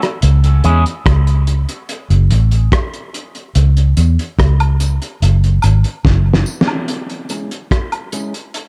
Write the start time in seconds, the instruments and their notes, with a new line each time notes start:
0.02 cross-stick, closed hi-hat
0.22 fingered electric bass C#2, closed hi-hat
0.44 closed hi-hat
0.64 fingered electric bass E2, clean electric guitar G#3 C#4 E4 G#4, closed hi-hat
0.86 closed hi-hat
1.06 fingered electric bass C#2, kick, cross-stick, closed hi-hat
1.27 closed hi-hat
1.47 closed hi-hat
1.69 closed hi-hat
1.89 closed hi-hat
2.10 fingered electric bass F#1, closed hi-hat
2.31 fingered electric bass A1, closed hi-hat
2.51 closed hi-hat
2.72 kick, cross-stick, closed hi-hat
2.94 closed hi-hat
3.14 closed hi-hat
3.35 closed hi-hat
3.55 fingered electric bass C#2, closed hi-hat
3.77 closed hi-hat
3.97 fingered electric bass E2, closed hi-hat, tambourine
4.19 closed hi-hat
4.39 fingered electric bass C#2, kick, cross-stick, closed hi-hat
4.60 closed hi-hat, high woodblock
4.80 closed hi-hat, tambourine
5.02 closed hi-hat
5.22 fingered electric bass F#1, closed hi-hat
5.44 closed hi-hat
5.62 fingered electric bass G#1, closed hi-hat, tambourine, high woodblock
5.84 closed hi-hat
6.05 fingered electric bass F#1, kick, snare
6.34 snare
6.46 tambourine
6.61 snare
6.68 high woodblock
6.88 closed hi-hat
7.10 closed hi-hat
7.29 clean electric guitar G#3 C#4 E4 G#4, closed hi-hat, tambourine
7.51 closed hi-hat
7.71 kick, cross-stick, closed hi-hat
7.92 closed hi-hat, high woodblock
8.12 clean electric guitar G#3 C#4 E4 G#4, closed hi-hat, tambourine
8.34 closed hi-hat
8.54 closed hi-hat